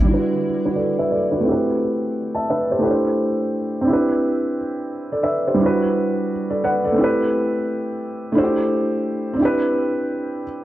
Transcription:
Already playing: D4 E4
0.02 G3 D4
0.08 E4 F#4
0.14 B4
0.65 F#4 B4
0.75 A4 D5
0.99 B4 E5
1.11 A4 D5
1.32 F#4 B4
1.40 A3 C4
1.46 E4 G4
1.52 B4
2.35 E5 A5
2.50 B4 E5
2.71 G4 C5
2.79 A3 D4 E4
2.83 G4 B4
2.91 C5
3.81 C4 D4
3.87 E4 G4
3.93 B4
5.12 A4 D5
5.23 B4 E5
5.47 G4 C5
5.54 G3 D4
5.60 E4 F#4
5.66 B4
6.50 A4 D5
6.64 B4 F#5
6.85 A4 D5
6.92 A3 C4
6.98 E4 G4
7.04 B4
8.32 A3 D4 E4
8.37 F#4 C5
8.43 G4
9.33 C4 D4
9.39 E4 G4
9.45 B4

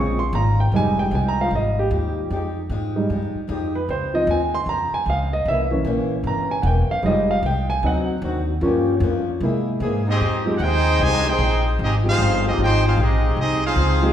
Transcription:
Already playing: A#1 A#2 C#3 F3 G#3 A#3 C4 C#4 F4 G#4 C#6
0.19 C6
0.33 G#1 A#2 G#3 C#4 F4 A#5
0.60 G5
0.72 F1 F3 G3 G#3 D#4 G4
0.76 G#5
0.99 G5
1.11 C2 F3 G#3 D#4 G4 G#5
1.28 A#5
1.37 F3 G#3 D#4 F4 F5
1.51 G#1 F3 G#3 D#4 G4
1.55 D#5
1.79 G4
1.91 D#2 F3 G#3 D#4 G4
2.30 F2 F3 G#3 D#4 G4
2.69 G#2 F3 G#3 D#4 G4
2.96 G3 G#3 D#4
3.09 G2 F3 G#3 D#4 G4
3.35 muted upright bass stroke
3.48 F2 F3 G#3 D#4 G4
3.75 B4
3.88 C#2 C#3 F3 G#3 C4 C5
4.14 F3 C4 D#4 D#5
4.27 D#2 C#3 F3 G#3 C4 G#5
4.55 C6
4.66 F2 C#3 F3 A#5
4.70 G#3 C4
4.92 G#5, muted upright bass stroke
5.06 C#2 C#3 F3 G#3 C4 F5
5.33 D#5
5.45 C2 C3 C#3 E3 A#3 C4 E4 E5
5.50 C#4
5.71 E3 A#3 C#4
5.85 A#1 C3 E3 A#3 C#4
6.23 G1 C3 E3 A#3 A#5
6.28 C#4
6.51 G#5
6.62 E1 C3 E3 A#3 C#4 F#5
6.67 G5
6.89 F5, muted upright bass stroke
7.03 F1 F3 G3 G#3 D#4 G4 D#5
7.07 G4
7.31 F5
7.43 C2 F3 G#3 D#4 G5
7.47 G4
7.70 G#5
7.83 D2 D3 F#3 C4 D#4 F#4 F#5
8.22 D#2 D3 D#3 C4 D4 D#4 F#4
8.61 G2 F3 A#3 C#4 G4
8.65 C#4
9.00 F2 G2 F3 A#3 C#4
9.41 C3 G#3 A#3 E4
9.45 G#4
9.80 G#2 C3 E3 A#3 C4 E4 G#4
10.07 G#3 C4 D#4 G4 G#4 D#5
10.21 F2 F3 G#3 D#4 G4
10.45 F3 G#3 C4 D#4 G4
10.56 D#2 F#5
10.61 F3 G#3 C4 D#4 G4 G#4 C5 G5
11.00 C2 C3 D#3 F3 G#3 D#4 G4 C5 G#5
11.28 C4 D#4 G#4 C5 G5
11.39 A#1 F3 G#3 D#4 G4
11.79 G#1 F3 G#3 D#4 G4
11.83 G#3 C4 D#4 G4 G#4 D#5
12.03 F3 G#3 C4 D#4 G4
12.09 G#3 C4 D#4 F4 G#4 C5 F5
12.18 G1 F3 G#3 D#4 G4
12.43 F3 G#3 D#4 G4
12.47 G#3 C4 D#4 G4 G#4 D#5
12.58 G#1 F3 G#3 D#4 G4
12.62 C4 D#4 G4 G#4 C5 G5
12.87 G#3 C4 D#4 F4 G#4 C5 F5
12.97 A#1 F3 G#3 C4 D#4 G4 G#4
13.02 G#3 D#4 D#5
13.37 C2 F3 G#3 C4 D#4 G4 G#4 D#5
13.41 D#4
13.65 G#3 C4 D#4 F4 G#4 C5 F5
13.76 C#2 F3 G#3 D#4 G4
14.01 F3 G#3 C4 D#4 G4 G#4

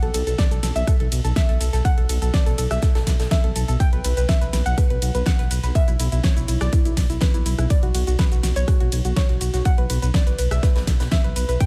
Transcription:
0.02 B1 A4, closed hi-hat
0.14 B1 A4, closed hi-hat, open hi-hat, ride, shaker
0.27 B1 A4, closed hi-hat, shaker
0.38 D5, kick, snare, closed hi-hat, ride, shaker
0.51 B1 A4, closed hi-hat, shaker
0.63 B1 A4, snare, closed hi-hat, open hi-hat, ride, shaker
0.76 B1 E5, closed hi-hat, shaker
0.87 A4, kick, cross-stick, closed hi-hat, ride, shaker
1.00 B1 A4, closed hi-hat
1.12 B1, closed hi-hat, open hi-hat, ride, shaker
1.24 B1 A4, closed hi-hat, shaker
1.36 E5, kick, snare, closed hi-hat, ride, shaker
1.49 B1 A4, closed hi-hat
1.60 B1 A4, closed hi-hat, open hi-hat, ride, shaker
1.73 B1 A4, snare, closed hi-hat, shaker
1.85 F#5, kick, closed hi-hat, ride, shaker
1.98 B1 A4, closed hi-hat
2.09 B1 A4, closed hi-hat, open hi-hat, ride, shaker
2.22 B1 A4, closed hi-hat, shaker
2.33 D5, kick, snare, closed hi-hat, ride, shaker
2.46 B1 A4, closed hi-hat, shaker
2.58 B1 A4, closed hi-hat, open hi-hat, ride, shaker
2.71 B1 E5, cross-stick, snare, closed hi-hat, shaker
2.82 A4, kick, snare, closed hi-hat, ride, shaker
2.95 B1 A4, snare, closed hi-hat
3.07 B1, kick, snare, closed hi-hat, open hi-hat, ride, shaker
3.19 B1 A4, snare, closed hi-hat, shaker
3.31 E5, kick, snare, closed hi-hat, ride, shaker
3.44 B1 A4, closed hi-hat
3.56 B1 A4, closed hi-hat, open hi-hat, ride, shaker
3.68 B1 A4, closed hi-hat, shaker
3.80 G5, kick, closed hi-hat, ride, shaker
3.93 B1 B4, closed hi-hat
4.04 B1 B4, closed hi-hat, open hi-hat, ride, shaker
4.17 B1 B4, closed hi-hat, shaker
4.29 E5, kick, snare, closed hi-hat, ride, shaker
4.41 B1 B4, closed hi-hat, shaker
4.53 B1 B4, snare, closed hi-hat, open hi-hat, ride, shaker
4.66 B1 F#5, closed hi-hat, shaker
4.78 B4, kick, cross-stick, closed hi-hat, ride, shaker
4.90 B1 B4, closed hi-hat
5.02 B1, closed hi-hat, open hi-hat, ride, shaker
5.15 B1 B4, closed hi-hat, shaker
5.26 F#5, kick, snare, closed hi-hat, ride, shaker
5.39 B1 B4, closed hi-hat
5.50 B1 B4, closed hi-hat, open hi-hat, ride, shaker
5.63 B1 B4, snare, closed hi-hat, shaker
5.75 E5, kick, closed hi-hat, ride, shaker
5.88 B1 E4, closed hi-hat, shaker
5.99 B1 E4, closed hi-hat, open hi-hat, ride, shaker
6.12 B1 E4, closed hi-hat, shaker
6.23 C#5, kick, snare, closed hi-hat, ride, shaker
6.36 B1 E4, closed hi-hat, shaker
6.48 B1 E4, closed hi-hat, open hi-hat, ride, shaker
6.61 B1 D5, cross-stick, snare, closed hi-hat, shaker
6.73 E4, kick, closed hi-hat, ride, shaker
6.85 B1 E4, closed hi-hat, shaker
6.97 B1, kick, snare, open hi-hat, ride, shaker
7.10 B1 E4, closed hi-hat, shaker
7.21 B4, kick, snare, closed hi-hat, ride, shaker
7.34 B1 E4, closed hi-hat, shaker
7.46 B1 E4, closed hi-hat, open hi-hat, ride, shaker
7.58 B1 E4, cross-stick, closed hi-hat, shaker
7.70 D5, kick, closed hi-hat, ride, shaker
7.83 B1 F#4, closed hi-hat
7.95 B1 F#4, closed hi-hat, open hi-hat, ride, shaker
8.07 B1 F#4, closed hi-hat, shaker
8.18 B4, kick, snare, closed hi-hat, ride, shaker
8.32 B1 F#4, closed hi-hat, shaker
8.43 B1 F#4, snare, closed hi-hat, open hi-hat, ride, shaker
8.56 B1 C#5, closed hi-hat, shaker
8.68 F#4, kick, cross-stick, closed hi-hat, ride, shaker
8.80 B1 F#4, closed hi-hat
8.92 B1, closed hi-hat, open hi-hat, ride, shaker
9.05 B1 F#4, closed hi-hat, shaker
9.16 C#5, kick, snare, closed hi-hat, ride, shaker
9.29 B1 F#4, closed hi-hat
9.41 B1 F#4, closed hi-hat, open hi-hat, ride, shaker
9.54 B1 F#4, snare, closed hi-hat, shaker
9.65 F#5, kick, closed hi-hat, ride, shaker
9.78 B1 B4, closed hi-hat
9.90 B1 B4, closed hi-hat, open hi-hat, ride, shaker
10.02 B1 B4, closed hi-hat, shaker
10.14 D5, kick, snare, closed hi-hat, ride, shaker
10.27 B1 B4, closed hi-hat, shaker
10.38 B1 B4, closed hi-hat, open hi-hat, ride, shaker
10.51 B1 E5, cross-stick, snare, closed hi-hat, shaker
10.63 B4, kick, snare, closed hi-hat, ride, shaker
10.76 B1 B4, snare, closed hi-hat
10.87 B1, kick, snare, closed hi-hat, open hi-hat, ride, shaker
11.00 B1 B4, snare, closed hi-hat, shaker
11.11 E5, kick, snare, closed hi-hat, ride, shaker
11.24 B1 B4, closed hi-hat
11.36 B1 B4, closed hi-hat, open hi-hat, ride, shaker
11.49 B1 B4, closed hi-hat, shaker
11.60 G5, kick, closed hi-hat, ride, shaker

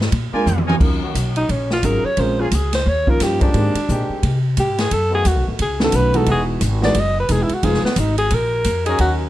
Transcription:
Already playing: G#2
0.01 snare
0.12 A#2, kick, ride
0.32 G#3 A#3 D4 F4 A#4 D5 G#5, muted upright bass stroke
0.46 F2, hi-hat pedal, high tom
0.58 high tom
0.66 D#4 A#4 C#5 G#5, high tom
0.80 D#2 F#3 C#4 D#4 F4 A#4, kick, crash
1.00 D#3 A#3 C#4 F#4
1.14 B1, kick, hi-hat pedal, ride
1.36 D#4, ride
1.49 A#1 C#4, kick, ride
1.71 F4, snare
1.83 G#1 F#3 C#4 D#4 F4 G#4 A#4, kick, hi-hat pedal, ride
2.03 C#5, muted upright bass stroke
2.17 A#1 G#3 C4 C#4 F4 A#4 C5, kick, ride
2.38 F3 A#3 C#4 F4 G#4
2.51 C#2 G#4, kick, hi-hat pedal, ride
2.73 C5, snare, ride
2.86 D#2 C#5, kick
3.07 F3 A#3 C#4 D#4 F4 A#4, kick
3.20 G2 G4, kick, snare, hi-hat pedal, ride
3.40 D#3 G#3 C4 D4 G4, kick, ride
3.54 G#2 D#3 G#3 A#3 C4 G4, ride
3.75 muted upright bass stroke, ride
3.88 A#2 D#3 G#3 C4 G4, kick, hi-hat pedal
4.09 muted upright bass stroke
4.23 C3, kick, ride
4.57 G#2 G4, kick, hi-hat pedal, ride
4.78 G#4, snare, ride
4.91 F#2 A4, kick, ride
5.10 D#3 A3 B3 F#4
5.14 G#4
5.25 D#2 F#4, kick, hi-hat pedal, ride
5.36 B1
5.47 A1
5.59 C#2 G#4, kick, ride
5.80 D#3 A3 B3 C#4 F#4, snare
5.84 A4
5.92 B1 B4, kick, hi-hat pedal, ride
6.14 E3 G#3 B3 D#4 F#4 A4, ride
6.26 E1 E3 G#3 D#4 F#4, kick, ride
6.31 G#4
6.61 G#1, kick, hi-hat pedal, ride
6.82 E3 G#3 B3 D#4 F#4 D5, snare
6.94 F#1, kick, ride
7.00 D#5
7.20 B4
7.29 E1 E3 G#3 B3 D#4 G#4, kick, hi-hat pedal, ride
7.43 E4
7.49 muted upright bass stroke, ride
7.54 F#4
7.63 F1 F3 G#3 B3 D#4 F4 G#4, kick, ride
7.74 snare
7.83 B3, muted upright bass stroke, snare
7.96 G#1 D#4, kick, hi-hat pedal, ride
8.18 G#4, ride
8.30 A#1 A#4, kick, ride
8.64 F2, kick, hi-hat pedal, ride
8.85 F#3 C#4 D#4 G#4 A#4, ride
8.98 D#2 F#4, kick, ride

